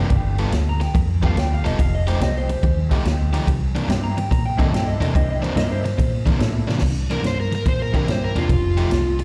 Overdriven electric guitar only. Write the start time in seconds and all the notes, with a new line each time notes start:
Already playing: C3 E3 A#3 D4
0.11 muted overdriven electric guitar stroke
0.39 G3 B3 F4 A4
0.53 muted overdriven electric guitar stroke
0.80 muted overdriven electric guitar stroke
0.95 muted overdriven electric guitar stroke
1.23 G3 B3 F4 A4
1.36 muted overdriven electric guitar stroke
1.64 G3 B3 F4 A4
1.79 muted overdriven electric guitar stroke
2.07 F3 A3 D#4 G4
2.22 muted overdriven electric guitar stroke
2.50 muted overdriven electric guitar stroke
2.63 muted overdriven electric guitar stroke
2.92 F3 A3 D#4 G4
3.06 muted overdriven electric guitar stroke
3.33 F3 A3 D#4 G4
3.48 muted overdriven electric guitar stroke
3.75 C3 E3 A#3 D4
3.90 muted overdriven electric guitar stroke
4.18 muted overdriven electric guitar stroke
4.31 muted overdriven electric guitar stroke
4.59 C3 E3 A#3 D4
4.72 muted overdriven electric guitar stroke
5.01 C3 E3 A#3 D4
5.15 muted overdriven electric guitar stroke
5.42 C3 E3 A#3 D4
5.56 muted overdriven electric guitar stroke
5.84 muted overdriven electric guitar stroke
5.98 muted overdriven electric guitar stroke
6.26 C3 E3 A#3 D4
6.40 muted overdriven electric guitar stroke
6.67 C3 E3 A#3 D4
6.82 muted overdriven electric guitar stroke
7.10 C3 E3 A#3 D4
7.24 muted overdriven electric guitar stroke
7.52 muted overdriven electric guitar stroke
7.66 muted overdriven electric guitar stroke
7.94 C3 E3 A#3 D4
8.08 muted overdriven electric guitar stroke
8.36 C3 E3 A#3 D4
8.50 muted overdriven electric guitar stroke
8.77 F3 A3 D#4 G4
8.92 muted overdriven electric guitar stroke
9.19 muted overdriven electric guitar stroke